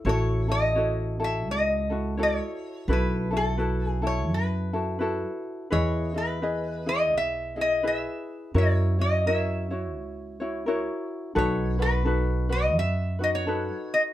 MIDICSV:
0, 0, Header, 1, 4, 480
1, 0, Start_track
1, 0, Tempo, 706714
1, 37, Time_signature, 4, 2, 24, 8
1, 9600, End_track
2, 0, Start_track
2, 0, Title_t, "Resonator guitar played with a steel bar"
2, 0, Program_c, 0, 25
2, 63, Note_on_c, 0, 73, 89
2, 347, Note_off_c, 0, 73, 0
2, 350, Note_on_c, 0, 75, 94
2, 836, Note_off_c, 0, 75, 0
2, 844, Note_on_c, 0, 76, 87
2, 1001, Note_off_c, 0, 76, 0
2, 1027, Note_on_c, 0, 75, 91
2, 1466, Note_off_c, 0, 75, 0
2, 1514, Note_on_c, 0, 73, 78
2, 1986, Note_off_c, 0, 73, 0
2, 1988, Note_on_c, 0, 71, 83
2, 2278, Note_off_c, 0, 71, 0
2, 2286, Note_on_c, 0, 69, 83
2, 2619, Note_off_c, 0, 69, 0
2, 2619, Note_on_c, 0, 68, 83
2, 2763, Note_on_c, 0, 73, 80
2, 2765, Note_off_c, 0, 68, 0
2, 2939, Note_off_c, 0, 73, 0
2, 2950, Note_on_c, 0, 71, 69
2, 3684, Note_off_c, 0, 71, 0
2, 3889, Note_on_c, 0, 73, 85
2, 4189, Note_off_c, 0, 73, 0
2, 4195, Note_on_c, 0, 71, 78
2, 4678, Note_on_c, 0, 75, 88
2, 4680, Note_off_c, 0, 71, 0
2, 4857, Note_off_c, 0, 75, 0
2, 4873, Note_on_c, 0, 76, 88
2, 5161, Note_off_c, 0, 76, 0
2, 5170, Note_on_c, 0, 75, 86
2, 5343, Note_off_c, 0, 75, 0
2, 5348, Note_on_c, 0, 76, 81
2, 5828, Note_on_c, 0, 73, 83
2, 5829, Note_off_c, 0, 76, 0
2, 6090, Note_off_c, 0, 73, 0
2, 6122, Note_on_c, 0, 75, 84
2, 6294, Note_off_c, 0, 75, 0
2, 6297, Note_on_c, 0, 76, 76
2, 7516, Note_off_c, 0, 76, 0
2, 7733, Note_on_c, 0, 73, 84
2, 8026, Note_off_c, 0, 73, 0
2, 8029, Note_on_c, 0, 71, 86
2, 8506, Note_on_c, 0, 75, 89
2, 8515, Note_off_c, 0, 71, 0
2, 8684, Note_off_c, 0, 75, 0
2, 8687, Note_on_c, 0, 76, 97
2, 8986, Note_off_c, 0, 76, 0
2, 8990, Note_on_c, 0, 75, 89
2, 9024, Note_off_c, 0, 75, 0
2, 9067, Note_on_c, 0, 73, 82
2, 9464, Note_off_c, 0, 73, 0
2, 9466, Note_on_c, 0, 75, 81
2, 9514, Note_off_c, 0, 75, 0
2, 9600, End_track
3, 0, Start_track
3, 0, Title_t, "Ukulele"
3, 0, Program_c, 1, 24
3, 39, Note_on_c, 1, 73, 74
3, 42, Note_on_c, 1, 64, 81
3, 44, Note_on_c, 1, 66, 76
3, 50, Note_on_c, 1, 69, 79
3, 319, Note_off_c, 1, 69, 0
3, 327, Note_on_c, 1, 69, 47
3, 328, Note_off_c, 1, 64, 0
3, 333, Note_off_c, 1, 66, 0
3, 333, Note_off_c, 1, 73, 0
3, 336, Note_on_c, 1, 64, 45
3, 341, Note_on_c, 1, 66, 38
3, 507, Note_off_c, 1, 66, 0
3, 511, Note_on_c, 1, 73, 54
3, 515, Note_off_c, 1, 69, 0
3, 516, Note_off_c, 1, 64, 0
3, 516, Note_on_c, 1, 66, 57
3, 524, Note_on_c, 1, 64, 58
3, 528, Note_on_c, 1, 69, 65
3, 804, Note_off_c, 1, 69, 0
3, 807, Note_off_c, 1, 64, 0
3, 810, Note_off_c, 1, 73, 0
3, 812, Note_off_c, 1, 66, 0
3, 812, Note_on_c, 1, 69, 53
3, 816, Note_on_c, 1, 64, 43
3, 828, Note_on_c, 1, 66, 41
3, 1289, Note_off_c, 1, 69, 0
3, 1289, Note_on_c, 1, 69, 49
3, 1296, Note_off_c, 1, 66, 0
3, 1298, Note_off_c, 1, 64, 0
3, 1298, Note_on_c, 1, 64, 46
3, 1303, Note_on_c, 1, 66, 40
3, 1474, Note_off_c, 1, 69, 0
3, 1476, Note_off_c, 1, 66, 0
3, 1477, Note_on_c, 1, 73, 48
3, 1481, Note_off_c, 1, 64, 0
3, 1484, Note_on_c, 1, 66, 56
3, 1488, Note_on_c, 1, 64, 62
3, 1491, Note_on_c, 1, 69, 59
3, 1958, Note_off_c, 1, 73, 0
3, 1962, Note_on_c, 1, 71, 77
3, 1964, Note_off_c, 1, 66, 0
3, 1966, Note_off_c, 1, 69, 0
3, 1967, Note_on_c, 1, 66, 72
3, 1969, Note_off_c, 1, 64, 0
3, 1969, Note_on_c, 1, 69, 82
3, 1972, Note_on_c, 1, 64, 81
3, 2238, Note_off_c, 1, 69, 0
3, 2246, Note_on_c, 1, 69, 50
3, 2251, Note_off_c, 1, 66, 0
3, 2252, Note_off_c, 1, 64, 0
3, 2256, Note_off_c, 1, 71, 0
3, 2260, Note_on_c, 1, 64, 43
3, 2260, Note_on_c, 1, 66, 40
3, 2424, Note_off_c, 1, 66, 0
3, 2429, Note_on_c, 1, 71, 55
3, 2432, Note_off_c, 1, 64, 0
3, 2432, Note_on_c, 1, 66, 53
3, 2435, Note_off_c, 1, 69, 0
3, 2440, Note_on_c, 1, 64, 62
3, 2443, Note_on_c, 1, 69, 55
3, 2721, Note_off_c, 1, 69, 0
3, 2729, Note_on_c, 1, 69, 48
3, 2730, Note_off_c, 1, 64, 0
3, 2730, Note_off_c, 1, 71, 0
3, 2731, Note_off_c, 1, 66, 0
3, 2738, Note_on_c, 1, 64, 51
3, 2749, Note_on_c, 1, 66, 39
3, 3207, Note_off_c, 1, 69, 0
3, 3212, Note_off_c, 1, 64, 0
3, 3215, Note_on_c, 1, 64, 43
3, 3215, Note_on_c, 1, 69, 45
3, 3216, Note_off_c, 1, 66, 0
3, 3224, Note_on_c, 1, 66, 43
3, 3388, Note_on_c, 1, 71, 49
3, 3390, Note_off_c, 1, 64, 0
3, 3392, Note_off_c, 1, 66, 0
3, 3398, Note_off_c, 1, 69, 0
3, 3398, Note_on_c, 1, 64, 53
3, 3400, Note_on_c, 1, 66, 55
3, 3406, Note_on_c, 1, 69, 57
3, 3872, Note_off_c, 1, 71, 0
3, 3875, Note_on_c, 1, 71, 69
3, 3879, Note_off_c, 1, 66, 0
3, 3881, Note_off_c, 1, 64, 0
3, 3882, Note_on_c, 1, 64, 78
3, 3883, Note_off_c, 1, 69, 0
3, 3883, Note_on_c, 1, 68, 80
3, 3886, Note_on_c, 1, 75, 80
3, 4164, Note_off_c, 1, 75, 0
3, 4169, Note_off_c, 1, 71, 0
3, 4172, Note_off_c, 1, 68, 0
3, 4172, Note_on_c, 1, 75, 49
3, 4177, Note_off_c, 1, 64, 0
3, 4180, Note_on_c, 1, 68, 43
3, 4185, Note_on_c, 1, 64, 36
3, 4355, Note_off_c, 1, 64, 0
3, 4358, Note_off_c, 1, 75, 0
3, 4360, Note_off_c, 1, 68, 0
3, 4360, Note_on_c, 1, 71, 56
3, 4363, Note_on_c, 1, 64, 57
3, 4368, Note_on_c, 1, 68, 61
3, 4369, Note_on_c, 1, 75, 62
3, 4654, Note_off_c, 1, 68, 0
3, 4656, Note_off_c, 1, 71, 0
3, 4657, Note_off_c, 1, 64, 0
3, 4660, Note_off_c, 1, 75, 0
3, 4662, Note_on_c, 1, 68, 47
3, 4667, Note_on_c, 1, 64, 40
3, 5132, Note_off_c, 1, 68, 0
3, 5135, Note_on_c, 1, 75, 50
3, 5140, Note_on_c, 1, 68, 45
3, 5144, Note_off_c, 1, 64, 0
3, 5147, Note_on_c, 1, 64, 40
3, 5316, Note_off_c, 1, 64, 0
3, 5317, Note_off_c, 1, 75, 0
3, 5319, Note_on_c, 1, 71, 52
3, 5321, Note_off_c, 1, 68, 0
3, 5324, Note_on_c, 1, 64, 52
3, 5330, Note_on_c, 1, 68, 64
3, 5800, Note_off_c, 1, 71, 0
3, 5803, Note_off_c, 1, 64, 0
3, 5805, Note_on_c, 1, 70, 68
3, 5806, Note_off_c, 1, 68, 0
3, 5806, Note_on_c, 1, 66, 74
3, 5813, Note_on_c, 1, 64, 84
3, 5814, Note_on_c, 1, 73, 79
3, 6096, Note_off_c, 1, 73, 0
3, 6098, Note_off_c, 1, 66, 0
3, 6098, Note_off_c, 1, 70, 0
3, 6102, Note_off_c, 1, 64, 0
3, 6104, Note_on_c, 1, 73, 45
3, 6113, Note_on_c, 1, 64, 45
3, 6121, Note_on_c, 1, 66, 42
3, 6285, Note_off_c, 1, 73, 0
3, 6289, Note_off_c, 1, 64, 0
3, 6291, Note_off_c, 1, 66, 0
3, 6292, Note_on_c, 1, 70, 54
3, 6299, Note_on_c, 1, 66, 55
3, 6303, Note_on_c, 1, 64, 62
3, 6307, Note_on_c, 1, 73, 65
3, 6581, Note_off_c, 1, 70, 0
3, 6584, Note_off_c, 1, 73, 0
3, 6585, Note_off_c, 1, 66, 0
3, 6587, Note_off_c, 1, 64, 0
3, 6592, Note_on_c, 1, 73, 49
3, 6596, Note_on_c, 1, 64, 46
3, 6603, Note_on_c, 1, 66, 40
3, 7055, Note_off_c, 1, 73, 0
3, 7063, Note_on_c, 1, 73, 55
3, 7065, Note_off_c, 1, 64, 0
3, 7071, Note_off_c, 1, 66, 0
3, 7074, Note_on_c, 1, 64, 48
3, 7074, Note_on_c, 1, 66, 49
3, 7239, Note_off_c, 1, 73, 0
3, 7241, Note_on_c, 1, 70, 60
3, 7243, Note_off_c, 1, 66, 0
3, 7244, Note_off_c, 1, 64, 0
3, 7251, Note_on_c, 1, 66, 59
3, 7252, Note_on_c, 1, 64, 73
3, 7253, Note_on_c, 1, 73, 66
3, 7707, Note_off_c, 1, 66, 0
3, 7707, Note_off_c, 1, 73, 0
3, 7709, Note_on_c, 1, 63, 78
3, 7710, Note_on_c, 1, 69, 72
3, 7711, Note_off_c, 1, 64, 0
3, 7714, Note_off_c, 1, 70, 0
3, 7714, Note_on_c, 1, 66, 82
3, 7717, Note_on_c, 1, 71, 76
3, 7999, Note_off_c, 1, 71, 0
3, 8004, Note_off_c, 1, 69, 0
3, 8006, Note_off_c, 1, 66, 0
3, 8007, Note_off_c, 1, 63, 0
3, 8007, Note_on_c, 1, 71, 48
3, 8014, Note_on_c, 1, 66, 47
3, 8016, Note_on_c, 1, 63, 41
3, 8179, Note_off_c, 1, 63, 0
3, 8180, Note_off_c, 1, 71, 0
3, 8182, Note_on_c, 1, 69, 60
3, 8184, Note_off_c, 1, 66, 0
3, 8187, Note_on_c, 1, 63, 62
3, 8192, Note_on_c, 1, 66, 64
3, 8200, Note_on_c, 1, 71, 61
3, 8477, Note_off_c, 1, 71, 0
3, 8482, Note_off_c, 1, 69, 0
3, 8485, Note_off_c, 1, 66, 0
3, 8485, Note_on_c, 1, 71, 52
3, 8488, Note_off_c, 1, 63, 0
3, 8493, Note_on_c, 1, 66, 45
3, 8957, Note_off_c, 1, 71, 0
3, 8957, Note_on_c, 1, 71, 52
3, 8961, Note_off_c, 1, 66, 0
3, 8969, Note_on_c, 1, 66, 44
3, 8973, Note_on_c, 1, 63, 42
3, 9144, Note_off_c, 1, 63, 0
3, 9148, Note_off_c, 1, 66, 0
3, 9148, Note_on_c, 1, 69, 54
3, 9149, Note_off_c, 1, 71, 0
3, 9152, Note_on_c, 1, 63, 52
3, 9156, Note_on_c, 1, 66, 58
3, 9156, Note_on_c, 1, 71, 57
3, 9600, Note_off_c, 1, 63, 0
3, 9600, Note_off_c, 1, 66, 0
3, 9600, Note_off_c, 1, 69, 0
3, 9600, Note_off_c, 1, 71, 0
3, 9600, End_track
4, 0, Start_track
4, 0, Title_t, "Upright bass"
4, 0, Program_c, 2, 32
4, 33, Note_on_c, 2, 33, 87
4, 996, Note_off_c, 2, 33, 0
4, 996, Note_on_c, 2, 37, 92
4, 1621, Note_off_c, 2, 37, 0
4, 1955, Note_on_c, 2, 35, 88
4, 2922, Note_off_c, 2, 35, 0
4, 2922, Note_on_c, 2, 42, 95
4, 3546, Note_off_c, 2, 42, 0
4, 3887, Note_on_c, 2, 40, 87
4, 4846, Note_off_c, 2, 40, 0
4, 4846, Note_on_c, 2, 35, 94
4, 5468, Note_off_c, 2, 35, 0
4, 5803, Note_on_c, 2, 42, 83
4, 6753, Note_off_c, 2, 42, 0
4, 6753, Note_on_c, 2, 37, 97
4, 7379, Note_off_c, 2, 37, 0
4, 7716, Note_on_c, 2, 35, 91
4, 8668, Note_off_c, 2, 35, 0
4, 8668, Note_on_c, 2, 42, 95
4, 9294, Note_off_c, 2, 42, 0
4, 9600, End_track
0, 0, End_of_file